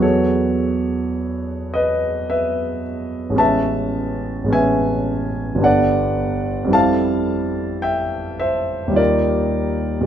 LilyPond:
<<
  \new Staff \with { instrumentName = "Grand piano" } { \time 3/4 \key e \major \tempo 4 = 54 <a' cis''>4. <b' dis''>8 <b' e''>8 r8 | <e'' a''>4 <e'' gis''>4 <d'' fis''>4 | <f'' a''>4 <e'' g''>8 <c'' e''>8 <ais' d''>4 | }
  \new Staff \with { instrumentName = "Grand piano" } { \time 3/4 \key e \major <e, fis b fis' gis'>2. | <a,, gis b cis' b'>4 <a,, gis b cis' b'>4 <g,, g b d' a'>4 | <f, g c' e' a'>2 <dis, g dis' eis'>4 | }
>>